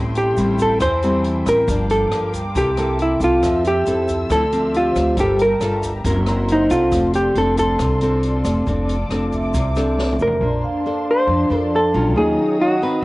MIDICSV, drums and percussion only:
0, 0, Header, 1, 2, 480
1, 0, Start_track
1, 0, Key_signature, -1, "major"
1, 0, Tempo, 436681
1, 1851, Time_signature, 4, 2, 24, 8
1, 14340, End_track
2, 0, Start_track
2, 0, Title_t, "Drums"
2, 164, Note_on_c, 9, 42, 41
2, 168, Note_on_c, 9, 82, 24
2, 274, Note_off_c, 9, 42, 0
2, 278, Note_off_c, 9, 82, 0
2, 408, Note_on_c, 9, 82, 51
2, 410, Note_on_c, 9, 42, 42
2, 518, Note_off_c, 9, 82, 0
2, 520, Note_off_c, 9, 42, 0
2, 645, Note_on_c, 9, 36, 23
2, 646, Note_on_c, 9, 82, 57
2, 648, Note_on_c, 9, 42, 38
2, 755, Note_off_c, 9, 36, 0
2, 755, Note_off_c, 9, 82, 0
2, 758, Note_off_c, 9, 42, 0
2, 883, Note_on_c, 9, 37, 61
2, 883, Note_on_c, 9, 42, 50
2, 884, Note_on_c, 9, 36, 60
2, 885, Note_on_c, 9, 82, 61
2, 993, Note_off_c, 9, 37, 0
2, 993, Note_off_c, 9, 42, 0
2, 994, Note_off_c, 9, 36, 0
2, 995, Note_off_c, 9, 82, 0
2, 1126, Note_on_c, 9, 42, 38
2, 1132, Note_on_c, 9, 82, 26
2, 1236, Note_off_c, 9, 42, 0
2, 1242, Note_off_c, 9, 82, 0
2, 1365, Note_on_c, 9, 42, 39
2, 1475, Note_off_c, 9, 42, 0
2, 1605, Note_on_c, 9, 36, 22
2, 1606, Note_on_c, 9, 37, 60
2, 1606, Note_on_c, 9, 42, 38
2, 1615, Note_on_c, 9, 82, 64
2, 1714, Note_off_c, 9, 36, 0
2, 1716, Note_off_c, 9, 37, 0
2, 1716, Note_off_c, 9, 42, 0
2, 1725, Note_off_c, 9, 82, 0
2, 1845, Note_on_c, 9, 36, 54
2, 1846, Note_on_c, 9, 42, 55
2, 1852, Note_on_c, 9, 82, 58
2, 1955, Note_off_c, 9, 36, 0
2, 1956, Note_off_c, 9, 42, 0
2, 1962, Note_off_c, 9, 82, 0
2, 2085, Note_on_c, 9, 42, 41
2, 2096, Note_on_c, 9, 82, 26
2, 2195, Note_off_c, 9, 42, 0
2, 2206, Note_off_c, 9, 82, 0
2, 2324, Note_on_c, 9, 37, 62
2, 2324, Note_on_c, 9, 42, 42
2, 2434, Note_off_c, 9, 37, 0
2, 2434, Note_off_c, 9, 42, 0
2, 2566, Note_on_c, 9, 36, 23
2, 2566, Note_on_c, 9, 42, 44
2, 2574, Note_on_c, 9, 82, 64
2, 2676, Note_off_c, 9, 36, 0
2, 2676, Note_off_c, 9, 42, 0
2, 2684, Note_off_c, 9, 82, 0
2, 2807, Note_on_c, 9, 36, 59
2, 2811, Note_on_c, 9, 42, 56
2, 2813, Note_on_c, 9, 82, 61
2, 2917, Note_off_c, 9, 36, 0
2, 2920, Note_off_c, 9, 42, 0
2, 2923, Note_off_c, 9, 82, 0
2, 3047, Note_on_c, 9, 37, 48
2, 3047, Note_on_c, 9, 42, 40
2, 3047, Note_on_c, 9, 82, 25
2, 3157, Note_off_c, 9, 37, 0
2, 3157, Note_off_c, 9, 42, 0
2, 3157, Note_off_c, 9, 82, 0
2, 3286, Note_on_c, 9, 42, 42
2, 3396, Note_off_c, 9, 42, 0
2, 3526, Note_on_c, 9, 36, 22
2, 3527, Note_on_c, 9, 42, 39
2, 3528, Note_on_c, 9, 82, 59
2, 3636, Note_off_c, 9, 36, 0
2, 3637, Note_off_c, 9, 42, 0
2, 3637, Note_off_c, 9, 82, 0
2, 3766, Note_on_c, 9, 36, 57
2, 3766, Note_on_c, 9, 37, 59
2, 3766, Note_on_c, 9, 42, 53
2, 3775, Note_on_c, 9, 82, 62
2, 3876, Note_off_c, 9, 36, 0
2, 3876, Note_off_c, 9, 37, 0
2, 3876, Note_off_c, 9, 42, 0
2, 3885, Note_off_c, 9, 82, 0
2, 4006, Note_on_c, 9, 42, 38
2, 4013, Note_on_c, 9, 82, 27
2, 4116, Note_off_c, 9, 42, 0
2, 4123, Note_off_c, 9, 82, 0
2, 4248, Note_on_c, 9, 42, 40
2, 4249, Note_on_c, 9, 82, 46
2, 4358, Note_off_c, 9, 42, 0
2, 4359, Note_off_c, 9, 82, 0
2, 4486, Note_on_c, 9, 36, 24
2, 4490, Note_on_c, 9, 82, 58
2, 4491, Note_on_c, 9, 42, 41
2, 4596, Note_off_c, 9, 36, 0
2, 4600, Note_off_c, 9, 82, 0
2, 4601, Note_off_c, 9, 42, 0
2, 4726, Note_on_c, 9, 36, 61
2, 4728, Note_on_c, 9, 37, 56
2, 4728, Note_on_c, 9, 42, 52
2, 4730, Note_on_c, 9, 82, 59
2, 4836, Note_off_c, 9, 36, 0
2, 4838, Note_off_c, 9, 37, 0
2, 4838, Note_off_c, 9, 42, 0
2, 4840, Note_off_c, 9, 82, 0
2, 4971, Note_on_c, 9, 42, 40
2, 4973, Note_on_c, 9, 82, 25
2, 5081, Note_off_c, 9, 42, 0
2, 5083, Note_off_c, 9, 82, 0
2, 5212, Note_on_c, 9, 42, 41
2, 5322, Note_off_c, 9, 42, 0
2, 5445, Note_on_c, 9, 36, 22
2, 5450, Note_on_c, 9, 37, 59
2, 5450, Note_on_c, 9, 42, 40
2, 5451, Note_on_c, 9, 82, 55
2, 5555, Note_off_c, 9, 36, 0
2, 5560, Note_off_c, 9, 37, 0
2, 5560, Note_off_c, 9, 42, 0
2, 5561, Note_off_c, 9, 82, 0
2, 5681, Note_on_c, 9, 42, 55
2, 5683, Note_on_c, 9, 36, 52
2, 5692, Note_on_c, 9, 82, 54
2, 5791, Note_off_c, 9, 42, 0
2, 5793, Note_off_c, 9, 36, 0
2, 5802, Note_off_c, 9, 82, 0
2, 5925, Note_on_c, 9, 42, 41
2, 5925, Note_on_c, 9, 82, 26
2, 6035, Note_off_c, 9, 42, 0
2, 6035, Note_off_c, 9, 82, 0
2, 6163, Note_on_c, 9, 37, 56
2, 6163, Note_on_c, 9, 42, 41
2, 6166, Note_on_c, 9, 82, 53
2, 6273, Note_off_c, 9, 37, 0
2, 6273, Note_off_c, 9, 42, 0
2, 6276, Note_off_c, 9, 82, 0
2, 6404, Note_on_c, 9, 36, 22
2, 6406, Note_on_c, 9, 42, 41
2, 6411, Note_on_c, 9, 82, 63
2, 6514, Note_off_c, 9, 36, 0
2, 6516, Note_off_c, 9, 42, 0
2, 6521, Note_off_c, 9, 82, 0
2, 6645, Note_on_c, 9, 36, 56
2, 6645, Note_on_c, 9, 42, 59
2, 6656, Note_on_c, 9, 82, 64
2, 6755, Note_off_c, 9, 36, 0
2, 6755, Note_off_c, 9, 42, 0
2, 6766, Note_off_c, 9, 82, 0
2, 6885, Note_on_c, 9, 37, 58
2, 6885, Note_on_c, 9, 42, 40
2, 6900, Note_on_c, 9, 82, 26
2, 6995, Note_off_c, 9, 37, 0
2, 6995, Note_off_c, 9, 42, 0
2, 7010, Note_off_c, 9, 82, 0
2, 7129, Note_on_c, 9, 42, 45
2, 7239, Note_off_c, 9, 42, 0
2, 7365, Note_on_c, 9, 42, 41
2, 7366, Note_on_c, 9, 36, 25
2, 7372, Note_on_c, 9, 82, 61
2, 7475, Note_off_c, 9, 42, 0
2, 7476, Note_off_c, 9, 36, 0
2, 7482, Note_off_c, 9, 82, 0
2, 7608, Note_on_c, 9, 36, 55
2, 7608, Note_on_c, 9, 82, 58
2, 7610, Note_on_c, 9, 37, 57
2, 7610, Note_on_c, 9, 42, 57
2, 7718, Note_off_c, 9, 36, 0
2, 7718, Note_off_c, 9, 82, 0
2, 7719, Note_off_c, 9, 37, 0
2, 7719, Note_off_c, 9, 42, 0
2, 7845, Note_on_c, 9, 42, 43
2, 7857, Note_on_c, 9, 82, 25
2, 7955, Note_off_c, 9, 42, 0
2, 7967, Note_off_c, 9, 82, 0
2, 8085, Note_on_c, 9, 42, 39
2, 8195, Note_off_c, 9, 42, 0
2, 8325, Note_on_c, 9, 36, 25
2, 8325, Note_on_c, 9, 42, 41
2, 8335, Note_on_c, 9, 82, 62
2, 8435, Note_off_c, 9, 36, 0
2, 8435, Note_off_c, 9, 42, 0
2, 8445, Note_off_c, 9, 82, 0
2, 8563, Note_on_c, 9, 37, 58
2, 8563, Note_on_c, 9, 42, 51
2, 8566, Note_on_c, 9, 36, 63
2, 8571, Note_on_c, 9, 82, 61
2, 8673, Note_off_c, 9, 37, 0
2, 8673, Note_off_c, 9, 42, 0
2, 8676, Note_off_c, 9, 36, 0
2, 8680, Note_off_c, 9, 82, 0
2, 8804, Note_on_c, 9, 42, 40
2, 8818, Note_on_c, 9, 82, 25
2, 8914, Note_off_c, 9, 42, 0
2, 8928, Note_off_c, 9, 82, 0
2, 9045, Note_on_c, 9, 42, 39
2, 9155, Note_off_c, 9, 42, 0
2, 9284, Note_on_c, 9, 37, 53
2, 9284, Note_on_c, 9, 42, 39
2, 9286, Note_on_c, 9, 36, 21
2, 9290, Note_on_c, 9, 82, 58
2, 9394, Note_off_c, 9, 37, 0
2, 9394, Note_off_c, 9, 42, 0
2, 9396, Note_off_c, 9, 36, 0
2, 9400, Note_off_c, 9, 82, 0
2, 9527, Note_on_c, 9, 36, 54
2, 9529, Note_on_c, 9, 42, 53
2, 9529, Note_on_c, 9, 82, 58
2, 9637, Note_off_c, 9, 36, 0
2, 9638, Note_off_c, 9, 82, 0
2, 9639, Note_off_c, 9, 42, 0
2, 9770, Note_on_c, 9, 42, 41
2, 9779, Note_on_c, 9, 82, 24
2, 9880, Note_off_c, 9, 42, 0
2, 9889, Note_off_c, 9, 82, 0
2, 10007, Note_on_c, 9, 37, 60
2, 10007, Note_on_c, 9, 42, 39
2, 10117, Note_off_c, 9, 37, 0
2, 10117, Note_off_c, 9, 42, 0
2, 10246, Note_on_c, 9, 36, 24
2, 10246, Note_on_c, 9, 42, 40
2, 10249, Note_on_c, 9, 82, 59
2, 10356, Note_off_c, 9, 36, 0
2, 10356, Note_off_c, 9, 42, 0
2, 10359, Note_off_c, 9, 82, 0
2, 10487, Note_on_c, 9, 36, 57
2, 10488, Note_on_c, 9, 82, 63
2, 10489, Note_on_c, 9, 42, 57
2, 10597, Note_off_c, 9, 36, 0
2, 10598, Note_off_c, 9, 82, 0
2, 10599, Note_off_c, 9, 42, 0
2, 10724, Note_on_c, 9, 82, 26
2, 10733, Note_on_c, 9, 37, 52
2, 10733, Note_on_c, 9, 42, 43
2, 10834, Note_off_c, 9, 82, 0
2, 10843, Note_off_c, 9, 37, 0
2, 10843, Note_off_c, 9, 42, 0
2, 10974, Note_on_c, 9, 38, 39
2, 11084, Note_off_c, 9, 38, 0
2, 11127, Note_on_c, 9, 47, 42
2, 11206, Note_on_c, 9, 82, 60
2, 11237, Note_off_c, 9, 47, 0
2, 11290, Note_on_c, 9, 43, 63
2, 11316, Note_off_c, 9, 82, 0
2, 11400, Note_off_c, 9, 43, 0
2, 14340, End_track
0, 0, End_of_file